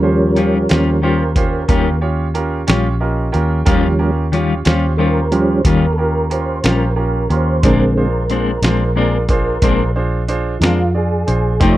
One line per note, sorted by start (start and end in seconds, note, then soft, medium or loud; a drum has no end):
0.00 0.66 D#2 loud
0.00 0.70 F3 soft
0.00 0.71 G3 soft
0.00 0.71 C#4 soft
0.00 0.28 C#4 soft
0.00 0.28 F4 soft
0.00 0.28 G4 soft
0.00 0.06 A4 medium
0.00 0.28 C5 medium
0.07 1.99 A#4 medium
0.36 0.56 D#3 medium
0.36 0.57 G3 soft
0.36 0.61 C#4 soft
0.36 0.57 C#4 soft
0.36 0.61 F4 soft
0.36 0.57 F4 medium
0.36 0.61 G4 soft
0.36 0.61 C5 soft
0.36 closed hi-hat medium
0.69 1.65 D#2 medium
0.69 1.00 F3 soft
0.69 0.90 G3 soft
0.69 1.01 G3 soft
0.69 0.94 C#4 soft
0.69 0.90 C#4 soft
0.69 1.01 C#4 soft
0.69 0.94 F4 soft
0.69 0.90 F4 soft
0.69 0.94 G4 soft
0.69 0.94 C5 medium
0.69 snare medium
0.69 closed hi-hat medium
1.02 1.22 D#3 medium
1.02 1.23 G3 medium
1.02 1.28 C#4 medium
1.02 1.23 C#4 medium
1.02 1.28 F4 medium
1.02 1.23 F4 medium
1.02 1.28 G4 medium
1.02 1.28 C5 medium
1.36 1.61 C#4 medium
1.36 1.61 F4 medium
1.36 1.61 G4 medium
1.36 1.61 C5 medium
1.36 kick medium
1.36 closed hi-hat medium
1.68 2.64 D#2 medium
1.68 1.88 D#3 medium
1.68 1.88 G3 medium
1.68 1.93 C#4 medium
1.68 1.89 C#4 medium
1.68 1.93 F4 medium
1.68 1.89 F4 medium
1.68 1.94 G4 medium
1.68 1.94 A#4 medium
1.68 kick medium
1.68 closed hi-hat medium
2.01 2.26 C#4 medium
2.01 2.26 F4 medium
2.01 2.26 G4 medium
2.01 2.27 C#5 medium
2.34 2.59 C#4 medium
2.34 2.59 F4 medium
2.34 2.60 G4 medium
2.34 2.60 A#4 medium
2.34 closed hi-hat medium
2.67 3.30 A#1 medium
2.67 2.89 G3 soft
2.67 2.92 C#4 medium
2.67 2.88 C#4 soft
2.67 2.92 F4 medium
2.67 2.87 F4 soft
2.67 2.92 G4 medium
2.67 2.93 C#5 medium
2.67 snare medium
2.67 closed hi-hat medium
3.00 3.25 C#4 soft
3.00 3.25 F4 medium
3.00 3.26 G4 soft
3.00 3.26 A#4 medium
3.00 3.31 D#5 soft
3.32 3.65 D#2 medium
3.32 3.58 C#4 medium
3.32 3.58 F4 medium
3.32 3.58 G4 medium
3.32 3.58 A#4 medium
3.32 3.64 G5 soft
3.32 closed hi-hat medium
3.65 4.62 D#2 medium
3.65 3.86 D#3 medium
3.65 4.11 F3 soft
3.65 3.87 G3 medium
3.65 4.11 G3 soft
3.65 3.91 C#4 medium
3.65 4.11 C#4 medium
3.65 3.87 C#4 medium
3.65 3.91 F4 medium
3.65 3.87 F4 loud
3.65 3.91 G4 medium
3.65 3.91 A#4 medium
3.65 kick loud
3.65 closed hi-hat medium
3.99 4.24 C#4 medium
3.99 4.24 F4 soft
3.99 4.25 G4 medium
3.99 4.24 A#4 medium
4.32 4.52 D#3 medium
4.32 4.53 G3 medium
4.32 4.57 C#4 soft
4.32 4.53 C#4 medium
4.32 4.57 F4 soft
4.32 4.54 F4 medium
4.32 4.58 G4 soft
4.32 4.58 C#5 medium
4.32 closed hi-hat medium
4.65 5.61 D#2 medium
4.65 4.86 G3 soft
4.65 4.90 C#4 medium
4.65 4.86 C#4 soft
4.65 4.85 F4 medium
4.65 4.91 F4 medium
4.65 4.91 G4 medium
4.65 4.91 C5 medium
4.65 snare medium
4.65 closed hi-hat medium
4.97 5.18 D#3 soft
4.97 5.19 G3 medium
4.97 5.23 C#4 soft
4.97 5.19 C#4 medium
4.97 5.24 F4 soft
4.97 5.20 F4 medium
4.97 5.24 G4 soft
4.97 5.01 A4 medium
4.97 5.32 A#4 loud
4.97 5.24 C5 medium
5.31 5.61 F3 medium
5.31 5.62 G3 soft
5.31 5.57 C#4 medium
5.31 5.62 C#4 medium
5.31 5.57 F4 soft
5.31 5.57 G4 medium
5.31 5.57 A#4 medium
5.31 5.65 C5 medium
5.31 closed hi-hat medium
5.65 6.60 D#2 medium
5.65 5.85 D#3 medium
5.65 5.85 G3 medium
5.65 5.90 C#4 medium
5.65 5.85 C#4 medium
5.65 5.90 F4 soft
5.65 5.85 F4 medium
5.65 5.90 G4 soft
5.65 5.90 A#4 medium
5.65 5.97 A#4 medium
5.65 kick medium
5.65 closed hi-hat medium
5.93 5.97 A4 medium
5.98 6.23 C#4 soft
5.98 6.23 F4 soft
5.98 6.23 G4 soft
5.98 6.30 A#4 medium
5.98 6.23 A#4 medium
6.30 6.56 C#4 soft
6.30 6.56 F4 soft
6.30 6.56 G4 soft
6.30 6.56 A#4 medium
6.30 6.64 C5 medium
6.30 closed hi-hat medium
6.64 7.26 A#1 medium
6.64 6.85 G3 soft
6.64 6.89 C#4 soft
6.64 6.85 C#4 soft
6.64 6.84 F4 soft
6.64 6.89 F4 soft
6.64 6.89 G4 soft
6.64 6.95 A#4 medium
6.64 6.89 C5 medium
6.64 snare medium
6.64 closed hi-hat medium
6.96 7.22 C#4 soft
6.96 7.21 F4 soft
6.96 7.22 G4 soft
6.96 7.29 A#4 medium
6.96 7.22 A#4 soft
7.29 7.61 D#2 medium
7.29 7.55 C#4 medium
7.29 7.55 F4 soft
7.29 7.55 G4 soft
7.29 7.55 A#4 soft
7.29 7.63 C5 medium
7.29 closed hi-hat soft
7.63 8.59 A#1 medium
7.63 7.84 A#2 medium
7.63 8.08 D3 soft
7.63 7.84 G#3 medium
7.63 8.08 G#3 soft
7.63 8.08 C4 medium
7.63 7.84 C4 medium
7.63 7.89 D4 medium
7.63 7.84 D4 medium
7.63 7.88 F4 medium
7.63 7.89 G#4 medium
7.63 7.96 A#4 medium
7.63 7.89 C5 medium
7.63 kick loud
7.63 closed hi-hat medium
7.93 8.22 D4 soft
7.93 8.22 F4 soft
7.93 7.97 A4 medium
7.93 9.91 A#4 medium
7.93 8.22 C5 medium
7.98 8.22 G#4 soft
8.30 8.50 A#2 soft
8.30 8.50 G#3 medium
8.30 8.50 C4 medium
8.30 8.55 D4 soft
8.30 8.51 D4 medium
8.30 8.55 F4 soft
8.30 8.55 G#4 soft
8.30 8.55 C5 soft
8.30 closed hi-hat soft
8.62 9.58 A#1 medium
8.62 8.84 G#3 soft
8.62 8.83 C4 soft
8.62 8.88 D4 soft
8.62 8.83 D4 soft
8.62 8.88 F4 soft
8.62 8.88 G#4 soft
8.62 8.88 C5 medium
8.62 snare medium
8.62 closed hi-hat medium
8.96 9.16 A#2 medium
8.96 9.16 G#3 medium
8.96 9.16 C4 medium
8.96 9.21 D4 medium
8.96 9.17 D4 medium
8.96 9.21 F4 medium
8.96 9.21 G#4 medium
8.96 9.21 D5 medium
9.29 9.54 D4 medium
9.29 9.54 F4 medium
9.29 9.54 G#4 medium
9.29 9.55 C5 medium
9.29 kick medium
9.29 closed hi-hat medium
9.62 10.57 A#1 medium
9.62 9.82 A#2 medium
9.62 9.82 G#3 medium
9.62 9.83 C4 medium
9.62 9.87 D4 medium
9.62 9.83 D4 medium
9.62 9.87 F4 medium
9.62 9.88 G#4 soft
9.62 9.88 C5 medium
9.62 kick medium
9.62 closed hi-hat medium
9.96 10.20 D4 medium
9.96 10.20 F4 soft
9.96 10.20 G#4 soft
9.96 10.20 C5 medium
10.28 10.53 D4 medium
10.28 10.54 F4 medium
10.28 10.54 G#4 medium
10.28 10.54 C5 medium
10.28 closed hi-hat medium
10.59 11.23 F2 medium
10.59 10.82 C4 soft
10.59 10.86 D4 soft
10.59 10.81 D4 soft
10.59 10.63 E4 medium
10.59 10.86 F4 soft
10.59 10.86 G#4 soft
10.59 10.86 A#4 medium
10.59 closed hi-hat medium
10.63 10.82 G#3 soft
10.63 10.95 F4 medium
10.63 snare loud
10.94 11.19 D4 soft
10.94 11.19 F4 soft
10.94 11.19 G#4 soft
10.94 11.60 G#4 medium
10.94 11.20 D5 soft
11.27 11.58 A#1 medium
11.27 11.52 D4 soft
11.27 11.52 F4 soft
11.27 11.52 G#4 soft
11.27 11.52 C5 medium
11.27 closed hi-hat medium
11.60 11.78 F1 medium
11.60 11.78 F3 medium
11.60 11.78 A3 medium
11.60 11.78 D#4 medium
11.60 11.78 D#4 soft
11.60 11.78 G4 medium
11.60 11.78 A4 soft
11.60 11.78 C5 medium
11.60 kick loud
11.60 closed hi-hat medium
11.64 11.78 F3 soft
11.64 11.78 A3 medium
11.64 11.78 C#5 medium